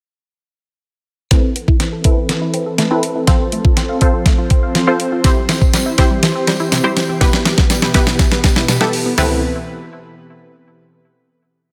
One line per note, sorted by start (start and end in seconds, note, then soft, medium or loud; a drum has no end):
1.31 3.26 E3 medium
1.31 1.40 A3 medium
1.31 1.81 C4 medium
1.31 7.17 C4 medium
1.31 1.81 E4 medium
1.31 1.81 A4 medium
1.31 5.21 A4 medium
1.31 1.81 B4 medium
1.31 3.26 B4 medium
1.31 kick loud
1.31 snare medium
1.31 closed hi-hat medium
1.43 1.52 C4 medium
1.56 1.64 B3 medium
1.56 closed hi-hat medium
1.68 1.76 E4 medium
1.68 kick medium
1.80 1.89 C4 medium
1.80 snare medium
1.80 closed hi-hat medium
1.93 2.01 A4 medium
2.04 2.63 C4 medium
2.04 2.63 E4 medium
2.04 2.63 A4 medium
2.04 2.63 B4 medium
2.04 kick medium
2.04 closed hi-hat medium
2.17 2.25 C4 medium
2.29 2.38 B3 medium
2.29 snare medium
2.29 closed hi-hat medium
2.42 2.50 E4 medium
2.54 2.62 C4 medium
2.54 closed hi-hat medium
2.66 2.75 A4 medium
2.78 2.87 A3 medium
2.78 snare medium
2.78 closed hi-hat medium
2.91 3.16 C4 medium
2.91 2.99 C4 medium
2.91 3.16 E4 medium
2.91 3.16 A4 medium
2.91 3.16 B4 medium
3.03 closed hi-hat medium
3.15 3.24 E4 medium
3.27 3.36 F3 medium
3.27 5.23 F3 medium
3.27 3.77 C4 medium
3.27 3.77 F4 medium
3.27 3.78 A4 medium
3.27 3.78 C5 medium
3.27 7.17 C5 medium
3.27 kick loud
3.27 snare medium
3.27 closed hi-hat medium
3.40 3.48 C4 medium
3.52 3.61 A3 medium
3.52 closed hi-hat medium
3.65 3.73 F4 medium
3.65 kick medium
3.77 3.85 C4 medium
3.77 snare medium
3.77 closed hi-hat medium
3.89 3.98 F5 medium
4.01 4.60 C4 medium
4.01 4.60 F4 medium
4.01 4.60 A4 medium
4.01 4.60 C5 medium
4.01 kick medium
4.01 closed hi-hat medium
4.14 4.22 C4 medium
4.26 4.35 A3 medium
4.26 kick medium
4.26 snare medium
4.26 closed hi-hat medium
4.38 4.47 F4 medium
4.50 4.59 C4 medium
4.50 kick medium
4.50 closed hi-hat medium
4.63 4.71 F5 medium
4.75 4.84 F3 medium
4.75 snare medium
4.75 closed hi-hat medium
4.87 5.12 C4 medium
4.87 4.96 C4 medium
4.87 5.12 F4 medium
4.87 5.13 A4 medium
4.87 5.13 C5 loud
5.00 closed hi-hat medium
5.12 5.21 F4 medium
5.24 5.33 C3 medium
5.24 9.14 E3 medium
5.24 5.74 C4 medium
5.24 5.74 E4 medium
5.24 9.14 G4 medium
5.24 5.74 G4 medium
5.24 5.74 C5 loud
5.24 kick loud
5.24 snare medium
5.24 closed hi-hat loud
5.24 tambourine medium
5.37 5.45 G3 medium
5.49 5.57 E3 medium
5.49 snare medium
5.49 closed hi-hat medium
5.49 tambourine soft
5.61 5.70 C4 medium
5.61 kick medium
5.61 tambourine soft
5.73 5.82 G3 medium
5.73 snare medium
5.73 closed hi-hat medium
5.73 tambourine medium
5.86 5.94 E4 medium
5.98 6.56 C4 medium
5.98 6.56 E4 medium
5.98 6.56 G4 medium
5.98 6.56 C5 loud
5.98 kick medium
5.98 snare medium
5.98 closed hi-hat medium
5.98 tambourine soft
6.11 6.19 G3 medium
6.23 6.31 E3 medium
6.23 snare medium
6.23 closed hi-hat medium
6.23 tambourine medium
6.35 6.44 C4 medium
6.47 6.56 G3 medium
6.47 snare medium
6.47 closed hi-hat medium
6.47 tambourine medium
6.60 6.68 E4 medium
6.60 tambourine soft
6.72 6.81 C3 medium
6.72 snare medium
6.72 closed hi-hat medium
6.72 tambourine medium
6.84 6.93 G3 medium
6.84 7.09 C4 medium
6.84 7.09 E4 medium
6.84 7.09 G4 medium
6.84 7.09 C5 loud
6.97 snare medium
6.97 closed hi-hat medium
6.97 tambourine soft
7.09 7.18 C4 medium
7.21 9.16 B2 medium
7.21 7.30 B2 loud
7.21 7.71 B3 medium
7.21 9.16 B3 medium
7.21 7.71 E4 medium
7.21 7.71 G4 medium
7.21 9.16 B4 medium
7.21 7.71 B4 loud
7.21 kick loud
7.21 snare loud
7.21 closed hi-hat loud
7.21 tambourine soft
7.33 7.42 G3 medium
7.33 snare loud
7.45 7.54 E3 medium
7.45 snare loud
7.45 closed hi-hat medium
7.45 tambourine soft
7.58 7.67 B3 medium
7.58 kick medium
7.58 snare loud
7.58 closed hi-hat soft
7.70 7.79 G3 medium
7.70 snare loud
7.70 closed hi-hat loud
7.70 tambourine medium
7.82 7.91 E4 medium
7.82 snare loud
7.94 8.53 B3 medium
7.94 8.53 E4 medium
7.94 8.53 G4 medium
7.94 8.53 B4 medium
7.94 kick medium
7.94 snare loud
7.94 closed hi-hat medium
7.94 tambourine soft
8.07 8.16 G3 medium
8.07 snare loud
8.07 tambourine soft
8.19 8.28 E3 medium
8.19 kick loud
8.19 snare loud
8.19 closed hi-hat medium
8.19 tambourine medium
8.32 8.40 B3 medium
8.32 snare loud
8.32 closed hi-hat soft
8.32 tambourine soft
8.44 8.53 G3 medium
8.44 kick medium
8.44 snare loud
8.44 closed hi-hat medium
8.44 tambourine medium
8.56 8.65 E4 medium
8.56 snare loud
8.56 tambourine soft
8.68 8.77 B2 medium
8.68 snare loud
8.68 closed hi-hat medium
8.68 tambourine medium
8.81 8.89 G3 medium
8.81 9.06 B3 medium
8.81 9.06 E4 medium
8.81 9.06 G4 medium
8.81 9.06 A4 medium
8.81 snare loud
8.93 open hi-hat medium
8.93 tambourine medium
9.06 9.14 B3 medium
9.18 9.41 E3 medium
9.18 9.41 A3 medium
9.18 9.41 B3 medium
9.18 9.41 C4 medium
9.18 9.41 E4 loud
9.18 9.41 E4 medium
9.18 9.41 A4 medium
9.18 9.41 B4 medium
9.18 snare loud
9.18 floor tom loud
9.18 open hi-hat medium
9.18 tambourine medium